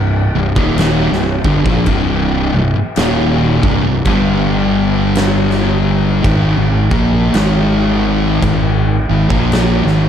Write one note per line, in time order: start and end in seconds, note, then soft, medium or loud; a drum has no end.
0.00 0.31 C1 medium
0.00 0.22 C2 medium
0.00 0.22 G2 medium
0.35 0.55 C1 medium
0.35 0.57 C2 medium
0.35 0.57 G2 medium
0.56 1.07 D#1 loud
0.56 1.09 D#2 medium
0.56 1.10 A#2 loud
0.56 1.10 D#3 loud
0.56 kick loud
0.78 snare loud
0.78 crash medium
1.11 1.42 C1 medium
1.11 1.45 C2 medium
1.11 1.44 G2 medium
1.11 snare soft
1.44 1.64 G1 medium
1.44 1.65 G2 medium
1.44 1.65 D3 loud
1.44 kick loud
1.66 1.86 A#1 loud
1.66 1.86 A#2 medium
1.66 1.86 F3 medium
1.66 kick loud
1.86 2.50 C1 medium
1.86 2.52 C2 medium
1.86 2.52 G2 medium
1.86 2.53 C3 loud
1.86 kick loud
1.86 crash medium
2.54 2.74 C1 medium
2.54 2.75 C2 medium
2.54 2.76 G2 medium
2.76 muted fingered electric bass stroke soft
2.76 muted distorted electric guitar stroke medium
2.96 3.60 D#1 medium
2.96 3.62 D#2 medium
2.96 3.62 A#2 loud
2.96 3.63 D#3 medium
2.96 snare loud
2.96 crash medium
3.63 3.83 C1 medium
3.63 3.84 C2 medium
3.63 3.84 G2 loud
3.63 kick loud
3.85 4.05 C1 medium
3.85 4.07 C2 medium
3.85 4.07 G2 medium
4.05 6.21 G1 medium
4.05 6.24 G2 medium
4.05 6.24 D3 loud
4.05 6.24 G3 loud
4.05 kick loud
4.05 crash medium
5.15 snare loud
5.15 crash medium
5.50 snare soft
6.24 6.56 G#1 loud
6.24 6.56 G#2 medium
6.24 6.56 D#3 loud
6.24 kick loud
6.24 crash medium
6.58 6.89 G#1 medium
6.58 6.91 G#2 medium
6.58 6.91 D#3 medium
6.91 7.31 A#1 loud
6.91 7.33 A#2 loud
6.91 7.33 F3 loud
6.91 7.33 A#3 loud
6.91 kick loud
7.34 8.39 G#1 medium
7.34 8.42 G#2 medium
7.34 8.42 D#3 medium
7.34 8.42 G#3 loud
7.34 snare loud
7.34 crash medium
8.42 9.05 G#1 medium
8.42 8.96 G#2 medium
8.42 8.97 D#3 medium
8.42 kick medium
8.42 crash medium
9.10 9.29 G#1 medium
9.10 9.31 G#2 medium
9.10 9.31 D#3 medium
9.30 9.81 A#1 loud
9.30 9.83 A#2 loud
9.30 9.84 F3 medium
9.30 9.84 A#3 loud
9.30 kick loud
9.52 snare loud
9.52 crash medium
9.85 10.09 G#1 medium
9.85 10.09 G#2 medium
9.85 10.09 D#3 medium
9.85 snare soft